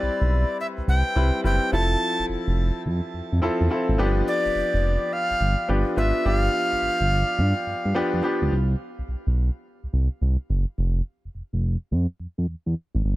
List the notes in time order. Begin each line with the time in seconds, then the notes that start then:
Already playing: G3 C4 E4 B4 D5
0.03 B1
0.21 B1
0.60 E5
0.78 C2
0.88 C2 G5
1.15 C2 G3 C4 E4 B4
1.44 F#1 G3 C4 E4 B4 G5
1.72 F1 F3 C4 E4 A4 A5
2.19 F1
2.29 F1
2.47 F1
2.85 F2
3.14 F2
3.32 F2
3.42 E2 F3 C4 E4 A4
3.60 E2
3.70 F3 C4 E4 A4
3.89 G#1
3.98 G1 F3 B3 D4 G4
4.28 D5
4.45 F1
4.55 F1
4.74 F1
5.13 F5
5.30 G1
5.40 G1
5.68 G1 F3 B3 D4 G4
5.97 G#1 F3 B3 D4 F4 E5
6.25 G1 F3 B3 D4 G4 F5
6.72 G1
6.82 G1
7.00 G1
7.38 G2
7.67 G2
7.85 G2
7.95 F2 F3 B3 D4 G4
8.13 F2
8.23 F3 B3 D4 G4
8.42 C#2
8.52 C2
8.98 B1
9.08 B1
9.27 B1
9.83 C2
9.93 C2
10.21 C2
10.50 F#1
10.78 F1
11.25 F1
11.35 F1
11.53 F1
11.91 F2
12.20 F2
12.38 F2
12.48 E2
12.66 E2
12.94 G#1
13.04 G1